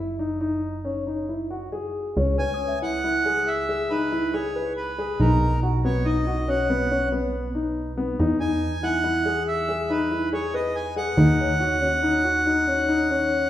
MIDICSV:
0, 0, Header, 1, 5, 480
1, 0, Start_track
1, 0, Tempo, 436047
1, 2385, Time_signature, 7, 2, 24, 8
1, 4772, Tempo, 428266
1, 15041, End_track
2, 0, Start_track
2, 0, Title_t, "Accordion"
2, 0, Program_c, 0, 21
2, 2626, Note_on_c, 0, 80, 87
2, 3071, Note_off_c, 0, 80, 0
2, 3111, Note_on_c, 0, 78, 100
2, 3825, Note_on_c, 0, 76, 78
2, 3845, Note_off_c, 0, 78, 0
2, 4294, Note_on_c, 0, 71, 79
2, 4313, Note_off_c, 0, 76, 0
2, 4767, Note_on_c, 0, 73, 70
2, 4784, Note_off_c, 0, 71, 0
2, 5218, Note_off_c, 0, 73, 0
2, 5257, Note_on_c, 0, 71, 72
2, 5745, Note_on_c, 0, 70, 75
2, 5753, Note_off_c, 0, 71, 0
2, 6190, Note_off_c, 0, 70, 0
2, 6468, Note_on_c, 0, 73, 79
2, 6697, Note_on_c, 0, 75, 79
2, 6711, Note_off_c, 0, 73, 0
2, 7185, Note_on_c, 0, 78, 76
2, 7192, Note_off_c, 0, 75, 0
2, 7858, Note_off_c, 0, 78, 0
2, 9333, Note_on_c, 0, 80, 92
2, 9816, Note_on_c, 0, 78, 100
2, 9826, Note_off_c, 0, 80, 0
2, 10485, Note_off_c, 0, 78, 0
2, 10539, Note_on_c, 0, 76, 90
2, 11011, Note_on_c, 0, 71, 81
2, 11024, Note_off_c, 0, 76, 0
2, 11450, Note_off_c, 0, 71, 0
2, 11498, Note_on_c, 0, 73, 86
2, 11734, Note_off_c, 0, 73, 0
2, 11734, Note_on_c, 0, 75, 80
2, 11965, Note_on_c, 0, 80, 84
2, 11972, Note_off_c, 0, 75, 0
2, 12184, Note_off_c, 0, 80, 0
2, 12209, Note_on_c, 0, 78, 97
2, 15041, Note_off_c, 0, 78, 0
2, 15041, End_track
3, 0, Start_track
3, 0, Title_t, "Celesta"
3, 0, Program_c, 1, 8
3, 2622, Note_on_c, 1, 71, 45
3, 2795, Note_on_c, 1, 87, 45
3, 2950, Note_on_c, 1, 76, 45
3, 4466, Note_off_c, 1, 71, 0
3, 4611, Note_off_c, 1, 87, 0
3, 4748, Note_off_c, 1, 76, 0
3, 12698, Note_on_c, 1, 73, 47
3, 14546, Note_off_c, 1, 73, 0
3, 15041, End_track
4, 0, Start_track
4, 0, Title_t, "Grand piano"
4, 0, Program_c, 2, 0
4, 0, Note_on_c, 2, 64, 59
4, 166, Note_off_c, 2, 64, 0
4, 212, Note_on_c, 2, 63, 61
4, 401, Note_off_c, 2, 63, 0
4, 448, Note_on_c, 2, 63, 67
4, 831, Note_off_c, 2, 63, 0
4, 931, Note_on_c, 2, 61, 62
4, 1123, Note_off_c, 2, 61, 0
4, 1176, Note_on_c, 2, 63, 58
4, 1367, Note_off_c, 2, 63, 0
4, 1419, Note_on_c, 2, 64, 50
4, 1611, Note_off_c, 2, 64, 0
4, 1657, Note_on_c, 2, 66, 61
4, 1853, Note_off_c, 2, 66, 0
4, 1897, Note_on_c, 2, 68, 61
4, 2287, Note_off_c, 2, 68, 0
4, 2389, Note_on_c, 2, 61, 74
4, 2580, Note_off_c, 2, 61, 0
4, 2627, Note_on_c, 2, 61, 65
4, 3010, Note_off_c, 2, 61, 0
4, 3106, Note_on_c, 2, 64, 57
4, 3297, Note_off_c, 2, 64, 0
4, 3348, Note_on_c, 2, 64, 66
4, 3537, Note_off_c, 2, 64, 0
4, 3583, Note_on_c, 2, 68, 63
4, 3964, Note_off_c, 2, 68, 0
4, 4059, Note_on_c, 2, 68, 63
4, 4250, Note_off_c, 2, 68, 0
4, 4301, Note_on_c, 2, 63, 66
4, 4489, Note_off_c, 2, 63, 0
4, 4538, Note_on_c, 2, 64, 69
4, 4726, Note_off_c, 2, 64, 0
4, 4776, Note_on_c, 2, 68, 71
4, 4967, Note_off_c, 2, 68, 0
4, 5021, Note_on_c, 2, 71, 63
4, 5404, Note_off_c, 2, 71, 0
4, 5501, Note_on_c, 2, 68, 72
4, 5692, Note_off_c, 2, 68, 0
4, 5737, Note_on_c, 2, 63, 81
4, 6123, Note_off_c, 2, 63, 0
4, 6220, Note_on_c, 2, 66, 69
4, 6413, Note_off_c, 2, 66, 0
4, 6466, Note_on_c, 2, 59, 71
4, 6655, Note_off_c, 2, 59, 0
4, 6697, Note_on_c, 2, 63, 73
4, 6890, Note_off_c, 2, 63, 0
4, 6939, Note_on_c, 2, 66, 67
4, 7131, Note_off_c, 2, 66, 0
4, 7178, Note_on_c, 2, 61, 83
4, 7370, Note_off_c, 2, 61, 0
4, 7420, Note_on_c, 2, 59, 73
4, 7612, Note_off_c, 2, 59, 0
4, 7658, Note_on_c, 2, 61, 75
4, 7851, Note_off_c, 2, 61, 0
4, 7894, Note_on_c, 2, 59, 68
4, 8281, Note_off_c, 2, 59, 0
4, 8374, Note_on_c, 2, 63, 65
4, 8760, Note_off_c, 2, 63, 0
4, 8851, Note_on_c, 2, 59, 70
4, 9046, Note_off_c, 2, 59, 0
4, 9097, Note_on_c, 2, 63, 79
4, 9289, Note_off_c, 2, 63, 0
4, 9333, Note_on_c, 2, 63, 73
4, 9716, Note_off_c, 2, 63, 0
4, 9810, Note_on_c, 2, 64, 67
4, 10003, Note_off_c, 2, 64, 0
4, 10045, Note_on_c, 2, 64, 76
4, 10239, Note_off_c, 2, 64, 0
4, 10286, Note_on_c, 2, 68, 69
4, 10669, Note_off_c, 2, 68, 0
4, 10769, Note_on_c, 2, 68, 67
4, 10959, Note_off_c, 2, 68, 0
4, 11007, Note_on_c, 2, 63, 78
4, 11197, Note_off_c, 2, 63, 0
4, 11247, Note_on_c, 2, 64, 64
4, 11435, Note_off_c, 2, 64, 0
4, 11488, Note_on_c, 2, 68, 71
4, 11675, Note_off_c, 2, 68, 0
4, 11729, Note_on_c, 2, 71, 70
4, 12107, Note_off_c, 2, 71, 0
4, 12202, Note_on_c, 2, 68, 71
4, 12391, Note_off_c, 2, 68, 0
4, 12438, Note_on_c, 2, 63, 81
4, 12819, Note_off_c, 2, 63, 0
4, 12915, Note_on_c, 2, 66, 70
4, 13105, Note_off_c, 2, 66, 0
4, 13153, Note_on_c, 2, 61, 66
4, 13344, Note_off_c, 2, 61, 0
4, 13392, Note_on_c, 2, 63, 73
4, 13584, Note_off_c, 2, 63, 0
4, 13636, Note_on_c, 2, 66, 69
4, 13827, Note_off_c, 2, 66, 0
4, 13878, Note_on_c, 2, 63, 72
4, 14069, Note_off_c, 2, 63, 0
4, 14117, Note_on_c, 2, 61, 68
4, 14311, Note_off_c, 2, 61, 0
4, 14354, Note_on_c, 2, 63, 77
4, 14551, Note_off_c, 2, 63, 0
4, 14600, Note_on_c, 2, 61, 73
4, 14995, Note_off_c, 2, 61, 0
4, 15041, End_track
5, 0, Start_track
5, 0, Title_t, "Analog synth bass"
5, 0, Program_c, 3, 38
5, 0, Note_on_c, 3, 30, 72
5, 1855, Note_off_c, 3, 30, 0
5, 2385, Note_on_c, 3, 37, 76
5, 5691, Note_off_c, 3, 37, 0
5, 5738, Note_on_c, 3, 35, 77
5, 9055, Note_off_c, 3, 35, 0
5, 9100, Note_on_c, 3, 40, 81
5, 12391, Note_off_c, 3, 40, 0
5, 12436, Note_on_c, 3, 39, 77
5, 15041, Note_off_c, 3, 39, 0
5, 15041, End_track
0, 0, End_of_file